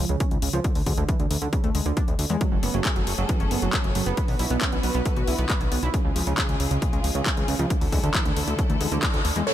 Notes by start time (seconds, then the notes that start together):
0.09 C#2 C#3, closed hi-hat
0.20 C#4, kick, closed hi-hat
0.31 C#2 G#2, closed hi-hat
0.42 C#2 C#3, open hi-hat
0.53 C#2 F3, closed hi-hat
0.64 D3, kick, closed hi-hat
0.75 D2 D3, open hi-hat
0.86 D2 G#3, kick, open hi-hat
0.97 D2 D3, closed hi-hat
1.09 E3, kick, closed hi-hat
1.20 D2 D3, closed hi-hat
1.31 D2 D3, open hi-hat
1.42 D2 D3, closed hi-hat
1.53 C#3, kick, closed hi-hat
1.64 D2 A3, closed hi-hat
1.75 D2 G#3, open hi-hat
1.86 D2 D3, closed hi-hat
1.97 D4, kick, closed hi-hat
2.08 D2 A2, closed hi-hat
2.19 D2 D3, open hi-hat
2.30 E2 G#3, closed hi-hat
2.41 F#3 A3 C#4 G#4 A4, kick, closed hi-hat
2.52 F#1 F#3
2.63 F#1 B3, open hi-hat
2.74 F#1 F#3, closed hi-hat
2.85 G#3, kick, clap, closed hi-hat
2.96 F#1 F#3, closed hi-hat
3.07 F#1 F#3, open hi-hat
3.18 F#1 F#3, closed hi-hat
3.29 E3, kick, closed hi-hat
3.40 F#1 C#4, closed hi-hat
3.51 F#1 B3, open hi-hat
3.62 F#1 F#3, closed hi-hat
3.73 F#4, kick, clap, closed hi-hat
3.84 F#1 C#3, closed hi-hat
3.95 F#1 F#3, open hi-hat
4.06 F#1 B3, closed hi-hat
4.17 D3 B3 F#4 B4, kick, closed hi-hat
4.28 B1 B3, open hi-hat
4.39 B1 E4, open hi-hat
4.50 B1 B3, closed hi-hat
4.61 C#4, kick, clap, closed hi-hat
4.72 B1 B3, closed hi-hat
4.83 B1 B3, open hi-hat
4.94 B1 B3, closed hi-hat
5.05 A3, kick, closed hi-hat
5.17 B1 F#4, closed hi-hat
5.27 B1 E4, open hi-hat
5.38 B1 B3, closed hi-hat
5.50 B4, kick, clap, closed hi-hat
5.61 B1 F#3, closed hi-hat
5.72 B1 B3, open hi-hat
5.83 B1 E4, closed hi-hat
5.94 C#3 F3 G#3 F4 G#4, kick, closed hi-hat
6.05 C#2 C#3
6.16 C#2 F3, open hi-hat
6.27 C#2 C#3, closed hi-hat
6.38 C#3, kick, clap, closed hi-hat
6.49 C#2 C#3, closed hi-hat
6.60 C#2 C#3, open hi-hat
6.71 C#2 C#3, closed hi-hat
6.82 B2, kick, closed hi-hat
6.93 C#2 G#3, closed hi-hat
7.04 C#2 F3, open hi-hat
7.15 C#2 C#3, closed hi-hat
7.26 C#4, kick, clap, closed hi-hat
7.37 C#2 G#2, closed hi-hat
7.48 C#2 C#3, open hi-hat
7.59 C#2 F3, closed hi-hat
7.70 D3 E3 A3 E4 A4, kick, closed hi-hat
7.81 D2 D3, open hi-hat
7.92 D2 G#3, kick, open hi-hat
8.03 D2 D3, closed hi-hat
8.14 E3, kick, clap, closed hi-hat
8.25 D2 D3, closed hi-hat
8.36 D2 D3, open hi-hat
8.47 D2 D3, closed hi-hat
8.59 C#3, kick, closed hi-hat
8.70 D2 A3, closed hi-hat
8.81 D2 G#3, open hi-hat
8.92 D2 D3, closed hi-hat
9.03 D4, kick, clap, closed hi-hat
9.14 D2 A2, closed hi-hat
9.25 D2 D3, open hi-hat
9.36 E2 G#3, closed hi-hat
9.47 C#3 F#3 A3 F#4 A4 C#5, crash, downlifter